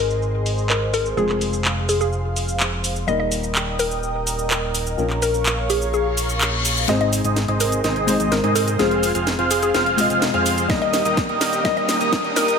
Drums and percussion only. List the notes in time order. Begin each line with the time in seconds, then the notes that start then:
0.10 cabasa
0.22 cabasa
0.46 open hi-hat, cabasa
0.58 cabasa
0.70 clap, cabasa
0.94 open hi-hat, cabasa
1.06 cabasa
1.18 cabasa
1.29 clap
1.41 open hi-hat, cabasa
1.53 cabasa
1.65 clap, cabasa
1.89 open hi-hat, cabasa
2.01 cabasa
2.13 cabasa
2.36 open hi-hat, cabasa
2.48 cabasa
2.60 clap, cabasa
2.84 open hi-hat, cabasa
2.96 cabasa
3.08 cabasa
3.32 open hi-hat, cabasa
3.44 cabasa
3.55 clap, cabasa
3.79 open hi-hat, cabasa
3.91 cabasa
4.03 cabasa
4.27 open hi-hat, cabasa
4.39 cabasa
4.51 clap, cabasa
4.75 open hi-hat, cabasa
4.86 cabasa
4.98 cabasa
5.10 clap
5.22 open hi-hat, cabasa
5.34 cabasa
5.46 clap, cabasa
5.70 open hi-hat, cabasa
5.82 cabasa
5.94 cabasa
6.17 open hi-hat, cabasa
6.29 cabasa
6.41 clap, cabasa
6.65 open hi-hat, cabasa
6.77 cabasa
6.89 snare, closed hi-hat, cabasa
7.01 closed hi-hat
7.13 open hi-hat, cabasa
7.25 closed hi-hat, cabasa
7.36 snare, closed hi-hat, cabasa
7.48 closed hi-hat
7.60 open hi-hat, cabasa
7.72 closed hi-hat, cabasa
7.84 snare, closed hi-hat, cabasa
7.96 closed hi-hat
8.08 open hi-hat, cabasa
8.20 closed hi-hat, cabasa
8.32 snare, closed hi-hat, cabasa
8.44 closed hi-hat
8.56 open hi-hat, cabasa
8.68 closed hi-hat, cabasa
8.79 snare, closed hi-hat, cabasa
8.91 closed hi-hat
9.03 open hi-hat, cabasa
9.15 closed hi-hat, cabasa
9.27 snare, closed hi-hat, cabasa
9.39 closed hi-hat
9.51 open hi-hat, cabasa
9.63 closed hi-hat, cabasa
9.74 snare, closed hi-hat, cabasa
9.86 closed hi-hat
9.98 open hi-hat, cabasa
10.10 closed hi-hat, cabasa
10.22 snare, closed hi-hat, cabasa
10.34 closed hi-hat
10.46 open hi-hat, cabasa
10.58 closed hi-hat, cabasa
10.70 kick, snare, closed hi-hat, cabasa
10.82 closed hi-hat
10.93 snare, open hi-hat, cabasa
11.05 closed hi-hat, cabasa
11.17 kick, snare, closed hi-hat, cabasa
11.29 closed hi-hat
11.41 snare, open hi-hat, cabasa
11.53 closed hi-hat, cabasa
11.65 kick, snare, closed hi-hat, cabasa
11.77 closed hi-hat
11.89 snare, open hi-hat, cabasa
12.01 closed hi-hat, cabasa
12.13 kick, snare, closed hi-hat, cabasa
12.24 closed hi-hat
12.36 snare, open hi-hat, cabasa
12.48 closed hi-hat, cabasa